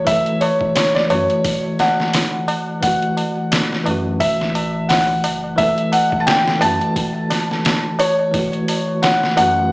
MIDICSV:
0, 0, Header, 1, 6, 480
1, 0, Start_track
1, 0, Key_signature, 3, "minor"
1, 0, Tempo, 689655
1, 46, Time_signature, 4, 2, 24, 8
1, 6767, End_track
2, 0, Start_track
2, 0, Title_t, "Felt piano"
2, 0, Program_c, 0, 0
2, 47, Note_on_c, 0, 76, 101
2, 269, Note_off_c, 0, 76, 0
2, 284, Note_on_c, 0, 73, 94
2, 514, Note_off_c, 0, 73, 0
2, 525, Note_on_c, 0, 73, 89
2, 652, Note_off_c, 0, 73, 0
2, 660, Note_on_c, 0, 74, 89
2, 695, Note_off_c, 0, 74, 0
2, 767, Note_on_c, 0, 73, 101
2, 1250, Note_on_c, 0, 78, 100
2, 1261, Note_off_c, 0, 73, 0
2, 1956, Note_off_c, 0, 78, 0
2, 1966, Note_on_c, 0, 78, 94
2, 2924, Note_on_c, 0, 76, 101
2, 2955, Note_off_c, 0, 78, 0
2, 3402, Note_on_c, 0, 78, 94
2, 3419, Note_off_c, 0, 76, 0
2, 3882, Note_on_c, 0, 76, 102
2, 3898, Note_off_c, 0, 78, 0
2, 4125, Note_on_c, 0, 78, 104
2, 4131, Note_off_c, 0, 76, 0
2, 4316, Note_on_c, 0, 81, 77
2, 4329, Note_off_c, 0, 78, 0
2, 4361, Note_on_c, 0, 79, 100
2, 4362, Note_off_c, 0, 81, 0
2, 4600, Note_on_c, 0, 81, 114
2, 4611, Note_off_c, 0, 79, 0
2, 5565, Note_on_c, 0, 73, 106
2, 5592, Note_off_c, 0, 81, 0
2, 6281, Note_on_c, 0, 78, 96
2, 6307, Note_off_c, 0, 73, 0
2, 6507, Note_off_c, 0, 78, 0
2, 6522, Note_on_c, 0, 78, 109
2, 6767, Note_off_c, 0, 78, 0
2, 6767, End_track
3, 0, Start_track
3, 0, Title_t, "Tine electric piano"
3, 0, Program_c, 1, 4
3, 0, Control_c, 1, 64, 127
3, 0, Note_on_c, 1, 52, 81
3, 0, Note_on_c, 1, 57, 79
3, 0, Note_on_c, 1, 66, 91
3, 31, Note_off_c, 1, 52, 0
3, 31, Note_on_c, 1, 52, 91
3, 57, Note_off_c, 1, 57, 0
3, 57, Note_on_c, 1, 57, 85
3, 80, Note_on_c, 1, 69, 94
3, 734, Note_off_c, 1, 52, 0
3, 746, Note_off_c, 1, 57, 0
3, 751, Note_on_c, 1, 52, 82
3, 758, Note_off_c, 1, 69, 0
3, 778, Note_on_c, 1, 57, 67
3, 799, Note_off_c, 1, 66, 0
3, 799, Note_on_c, 1, 66, 81
3, 1933, Note_off_c, 1, 52, 0
3, 1947, Note_off_c, 1, 57, 0
3, 1951, Note_on_c, 1, 52, 76
3, 1958, Note_off_c, 1, 66, 0
3, 1974, Note_on_c, 1, 57, 71
3, 1999, Note_on_c, 1, 66, 91
3, 2653, Note_off_c, 1, 52, 0
3, 2665, Note_off_c, 1, 57, 0
3, 2669, Note_on_c, 1, 52, 87
3, 2678, Note_off_c, 1, 66, 0
3, 2696, Note_on_c, 1, 57, 73
3, 2721, Note_on_c, 1, 66, 92
3, 3853, Note_off_c, 1, 52, 0
3, 3866, Note_off_c, 1, 57, 0
3, 3871, Note_on_c, 1, 52, 90
3, 3879, Note_off_c, 1, 66, 0
3, 3896, Note_on_c, 1, 57, 88
3, 3920, Note_on_c, 1, 69, 99
3, 4573, Note_off_c, 1, 52, 0
3, 4586, Note_off_c, 1, 57, 0
3, 4586, Note_on_c, 1, 52, 83
3, 4598, Note_off_c, 1, 69, 0
3, 4610, Note_on_c, 1, 57, 73
3, 4638, Note_on_c, 1, 66, 79
3, 5771, Note_off_c, 1, 52, 0
3, 5783, Note_off_c, 1, 57, 0
3, 5787, Note_on_c, 1, 52, 80
3, 5797, Note_off_c, 1, 66, 0
3, 5812, Note_on_c, 1, 57, 75
3, 5839, Note_on_c, 1, 66, 83
3, 6491, Note_off_c, 1, 52, 0
3, 6504, Note_off_c, 1, 57, 0
3, 6509, Note_on_c, 1, 52, 85
3, 6518, Note_off_c, 1, 66, 0
3, 6533, Note_on_c, 1, 57, 77
3, 6560, Note_on_c, 1, 66, 97
3, 6767, Note_off_c, 1, 52, 0
3, 6767, Note_off_c, 1, 57, 0
3, 6767, Note_off_c, 1, 66, 0
3, 6767, End_track
4, 0, Start_track
4, 0, Title_t, "Sub bass"
4, 0, Program_c, 2, 38
4, 48, Note_on_c, 2, 30, 97
4, 167, Note_off_c, 2, 30, 0
4, 774, Note_on_c, 2, 42, 105
4, 890, Note_off_c, 2, 42, 0
4, 1968, Note_on_c, 2, 30, 98
4, 2087, Note_off_c, 2, 30, 0
4, 2692, Note_on_c, 2, 42, 106
4, 2929, Note_on_c, 2, 33, 82
4, 2939, Note_off_c, 2, 42, 0
4, 3627, Note_off_c, 2, 33, 0
4, 3651, Note_on_c, 2, 30, 81
4, 3863, Note_off_c, 2, 30, 0
4, 3888, Note_on_c, 2, 30, 97
4, 4007, Note_off_c, 2, 30, 0
4, 4611, Note_on_c, 2, 42, 106
4, 4728, Note_off_c, 2, 42, 0
4, 5807, Note_on_c, 2, 30, 99
4, 5927, Note_off_c, 2, 30, 0
4, 6531, Note_on_c, 2, 42, 104
4, 6767, Note_off_c, 2, 42, 0
4, 6767, End_track
5, 0, Start_track
5, 0, Title_t, "Tabla"
5, 50, Note_on_c, 9, 60, 48
5, 120, Note_off_c, 9, 60, 0
5, 187, Note_on_c, 9, 60, 29
5, 256, Note_off_c, 9, 60, 0
5, 293, Note_on_c, 9, 60, 80
5, 363, Note_off_c, 9, 60, 0
5, 427, Note_on_c, 9, 60, 35
5, 496, Note_off_c, 9, 60, 0
5, 538, Note_on_c, 9, 60, 51
5, 608, Note_off_c, 9, 60, 0
5, 665, Note_on_c, 9, 60, 26
5, 735, Note_off_c, 9, 60, 0
5, 766, Note_on_c, 9, 60, 87
5, 836, Note_off_c, 9, 60, 0
5, 905, Note_on_c, 9, 60, 38
5, 975, Note_off_c, 9, 60, 0
5, 1009, Note_on_c, 9, 60, 50
5, 1079, Note_off_c, 9, 60, 0
5, 1143, Note_on_c, 9, 60, 25
5, 1213, Note_off_c, 9, 60, 0
5, 1250, Note_on_c, 9, 60, 103
5, 1320, Note_off_c, 9, 60, 0
5, 1489, Note_on_c, 9, 60, 55
5, 1558, Note_off_c, 9, 60, 0
5, 1623, Note_on_c, 9, 60, 26
5, 1693, Note_off_c, 9, 60, 0
5, 1725, Note_on_c, 9, 60, 105
5, 1795, Note_off_c, 9, 60, 0
5, 1862, Note_on_c, 9, 60, 42
5, 1931, Note_off_c, 9, 60, 0
5, 1969, Note_on_c, 9, 60, 49
5, 2039, Note_off_c, 9, 60, 0
5, 2102, Note_on_c, 9, 60, 26
5, 2171, Note_off_c, 9, 60, 0
5, 2205, Note_on_c, 9, 60, 81
5, 2275, Note_off_c, 9, 60, 0
5, 2349, Note_on_c, 9, 60, 37
5, 2418, Note_off_c, 9, 60, 0
5, 2447, Note_on_c, 9, 60, 55
5, 2516, Note_off_c, 9, 60, 0
5, 2580, Note_on_c, 9, 60, 24
5, 2649, Note_off_c, 9, 60, 0
5, 2683, Note_on_c, 9, 60, 87
5, 2753, Note_off_c, 9, 60, 0
5, 2819, Note_on_c, 9, 60, 35
5, 2889, Note_off_c, 9, 60, 0
5, 2927, Note_on_c, 9, 60, 44
5, 2997, Note_off_c, 9, 60, 0
5, 3062, Note_on_c, 9, 60, 23
5, 3131, Note_off_c, 9, 60, 0
5, 3167, Note_on_c, 9, 60, 92
5, 3237, Note_off_c, 9, 60, 0
5, 3302, Note_on_c, 9, 60, 38
5, 3372, Note_off_c, 9, 60, 0
5, 3408, Note_on_c, 9, 60, 54
5, 3477, Note_off_c, 9, 60, 0
5, 3541, Note_on_c, 9, 60, 22
5, 3611, Note_off_c, 9, 60, 0
5, 3646, Note_on_c, 9, 60, 84
5, 3716, Note_off_c, 9, 60, 0
5, 3784, Note_on_c, 9, 60, 45
5, 3854, Note_off_c, 9, 60, 0
5, 3883, Note_on_c, 9, 60, 46
5, 3953, Note_off_c, 9, 60, 0
5, 4022, Note_on_c, 9, 60, 26
5, 4092, Note_off_c, 9, 60, 0
5, 4121, Note_on_c, 9, 60, 84
5, 4190, Note_off_c, 9, 60, 0
5, 4261, Note_on_c, 9, 60, 34
5, 4331, Note_off_c, 9, 60, 0
5, 4362, Note_on_c, 9, 60, 56
5, 4431, Note_off_c, 9, 60, 0
5, 4598, Note_on_c, 9, 60, 88
5, 4667, Note_off_c, 9, 60, 0
5, 4744, Note_on_c, 9, 60, 35
5, 4813, Note_off_c, 9, 60, 0
5, 4842, Note_on_c, 9, 60, 48
5, 4912, Note_off_c, 9, 60, 0
5, 4983, Note_on_c, 9, 60, 22
5, 5052, Note_off_c, 9, 60, 0
5, 5083, Note_on_c, 9, 60, 81
5, 5152, Note_off_c, 9, 60, 0
5, 5217, Note_on_c, 9, 60, 35
5, 5287, Note_off_c, 9, 60, 0
5, 5325, Note_on_c, 9, 60, 49
5, 5395, Note_off_c, 9, 60, 0
5, 5460, Note_on_c, 9, 60, 23
5, 5529, Note_off_c, 9, 60, 0
5, 5559, Note_on_c, 9, 60, 92
5, 5628, Note_off_c, 9, 60, 0
5, 5699, Note_on_c, 9, 60, 43
5, 5769, Note_off_c, 9, 60, 0
5, 5802, Note_on_c, 9, 60, 51
5, 5872, Note_off_c, 9, 60, 0
5, 5937, Note_on_c, 9, 60, 24
5, 6006, Note_off_c, 9, 60, 0
5, 6048, Note_on_c, 9, 60, 74
5, 6117, Note_off_c, 9, 60, 0
5, 6181, Note_on_c, 9, 60, 34
5, 6250, Note_off_c, 9, 60, 0
5, 6277, Note_on_c, 9, 60, 45
5, 6346, Note_off_c, 9, 60, 0
5, 6421, Note_on_c, 9, 60, 24
5, 6490, Note_off_c, 9, 60, 0
5, 6520, Note_on_c, 9, 60, 86
5, 6590, Note_off_c, 9, 60, 0
5, 6668, Note_on_c, 9, 60, 38
5, 6737, Note_off_c, 9, 60, 0
5, 6767, End_track
6, 0, Start_track
6, 0, Title_t, "Drums"
6, 46, Note_on_c, 9, 36, 106
6, 46, Note_on_c, 9, 46, 88
6, 115, Note_off_c, 9, 36, 0
6, 116, Note_off_c, 9, 46, 0
6, 182, Note_on_c, 9, 42, 43
6, 252, Note_off_c, 9, 42, 0
6, 286, Note_on_c, 9, 46, 70
6, 355, Note_off_c, 9, 46, 0
6, 422, Note_on_c, 9, 36, 100
6, 492, Note_off_c, 9, 36, 0
6, 526, Note_on_c, 9, 46, 85
6, 533, Note_on_c, 9, 38, 113
6, 596, Note_off_c, 9, 46, 0
6, 603, Note_off_c, 9, 38, 0
6, 671, Note_on_c, 9, 38, 54
6, 740, Note_off_c, 9, 38, 0
6, 766, Note_on_c, 9, 46, 65
6, 836, Note_off_c, 9, 46, 0
6, 903, Note_on_c, 9, 42, 44
6, 973, Note_off_c, 9, 42, 0
6, 1006, Note_on_c, 9, 36, 114
6, 1006, Note_on_c, 9, 46, 86
6, 1075, Note_off_c, 9, 46, 0
6, 1076, Note_off_c, 9, 36, 0
6, 1247, Note_on_c, 9, 46, 66
6, 1254, Note_on_c, 9, 38, 49
6, 1317, Note_off_c, 9, 46, 0
6, 1324, Note_off_c, 9, 38, 0
6, 1391, Note_on_c, 9, 38, 35
6, 1461, Note_off_c, 9, 38, 0
6, 1486, Note_on_c, 9, 46, 88
6, 1493, Note_on_c, 9, 38, 117
6, 1556, Note_off_c, 9, 46, 0
6, 1563, Note_off_c, 9, 38, 0
6, 1727, Note_on_c, 9, 46, 66
6, 1797, Note_off_c, 9, 46, 0
6, 1967, Note_on_c, 9, 36, 109
6, 1967, Note_on_c, 9, 46, 89
6, 2036, Note_off_c, 9, 36, 0
6, 2036, Note_off_c, 9, 46, 0
6, 2105, Note_on_c, 9, 42, 41
6, 2174, Note_off_c, 9, 42, 0
6, 2209, Note_on_c, 9, 46, 68
6, 2279, Note_off_c, 9, 46, 0
6, 2448, Note_on_c, 9, 46, 89
6, 2455, Note_on_c, 9, 38, 113
6, 2518, Note_off_c, 9, 46, 0
6, 2525, Note_off_c, 9, 38, 0
6, 2593, Note_on_c, 9, 38, 39
6, 2662, Note_off_c, 9, 38, 0
6, 2688, Note_on_c, 9, 46, 65
6, 2758, Note_off_c, 9, 46, 0
6, 2926, Note_on_c, 9, 36, 104
6, 2926, Note_on_c, 9, 46, 89
6, 2996, Note_off_c, 9, 36, 0
6, 2996, Note_off_c, 9, 46, 0
6, 3072, Note_on_c, 9, 38, 45
6, 3141, Note_off_c, 9, 38, 0
6, 3168, Note_on_c, 9, 46, 63
6, 3238, Note_off_c, 9, 46, 0
6, 3407, Note_on_c, 9, 46, 82
6, 3414, Note_on_c, 9, 38, 121
6, 3476, Note_off_c, 9, 46, 0
6, 3483, Note_off_c, 9, 38, 0
6, 3646, Note_on_c, 9, 46, 67
6, 3715, Note_off_c, 9, 46, 0
6, 3885, Note_on_c, 9, 36, 111
6, 3885, Note_on_c, 9, 46, 90
6, 3955, Note_off_c, 9, 36, 0
6, 3955, Note_off_c, 9, 46, 0
6, 4021, Note_on_c, 9, 42, 43
6, 4091, Note_off_c, 9, 42, 0
6, 4125, Note_on_c, 9, 46, 69
6, 4194, Note_off_c, 9, 46, 0
6, 4261, Note_on_c, 9, 36, 96
6, 4331, Note_off_c, 9, 36, 0
6, 4363, Note_on_c, 9, 46, 86
6, 4370, Note_on_c, 9, 38, 120
6, 4433, Note_off_c, 9, 46, 0
6, 4440, Note_off_c, 9, 38, 0
6, 4507, Note_on_c, 9, 38, 60
6, 4577, Note_off_c, 9, 38, 0
6, 4606, Note_on_c, 9, 46, 65
6, 4675, Note_off_c, 9, 46, 0
6, 4742, Note_on_c, 9, 42, 44
6, 4812, Note_off_c, 9, 42, 0
6, 4845, Note_on_c, 9, 36, 104
6, 4846, Note_on_c, 9, 46, 93
6, 4914, Note_off_c, 9, 36, 0
6, 4916, Note_off_c, 9, 46, 0
6, 5085, Note_on_c, 9, 46, 64
6, 5092, Note_on_c, 9, 38, 51
6, 5154, Note_off_c, 9, 46, 0
6, 5161, Note_off_c, 9, 38, 0
6, 5229, Note_on_c, 9, 38, 35
6, 5298, Note_off_c, 9, 38, 0
6, 5324, Note_on_c, 9, 46, 94
6, 5331, Note_on_c, 9, 38, 120
6, 5393, Note_off_c, 9, 46, 0
6, 5400, Note_off_c, 9, 38, 0
6, 5564, Note_on_c, 9, 46, 70
6, 5634, Note_off_c, 9, 46, 0
6, 5804, Note_on_c, 9, 36, 108
6, 5804, Note_on_c, 9, 46, 89
6, 5873, Note_off_c, 9, 36, 0
6, 5873, Note_off_c, 9, 46, 0
6, 5938, Note_on_c, 9, 42, 44
6, 6008, Note_off_c, 9, 42, 0
6, 6043, Note_on_c, 9, 46, 70
6, 6112, Note_off_c, 9, 46, 0
6, 6283, Note_on_c, 9, 46, 86
6, 6290, Note_on_c, 9, 38, 109
6, 6353, Note_off_c, 9, 46, 0
6, 6360, Note_off_c, 9, 38, 0
6, 6427, Note_on_c, 9, 38, 41
6, 6496, Note_off_c, 9, 38, 0
6, 6525, Note_on_c, 9, 46, 69
6, 6594, Note_off_c, 9, 46, 0
6, 6767, End_track
0, 0, End_of_file